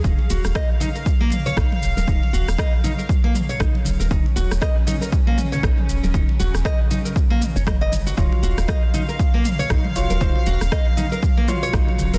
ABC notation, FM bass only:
X:1
M:4/4
L:1/16
Q:"Swing 16ths" 1/4=118
K:Ebm
V:1 name="FM bass" clef=bass
E,,, z E,,, E,,, z8 B,,,2 E,,, E,,, | E,,, z E,,, E,,, z8 B,,,2 E,,, E,,, | E,,, z E,,, E,,, z8 B,,,2 E,,, E,,, | E,,, z E,,, E,,, z6 z G,,,4- G,,, |
E,,, z E,,, E,,, z8 B,,,2 E,,, E,,, | E,,, z E,,, E,,, z8 B,,,2 E,,, E,,, |]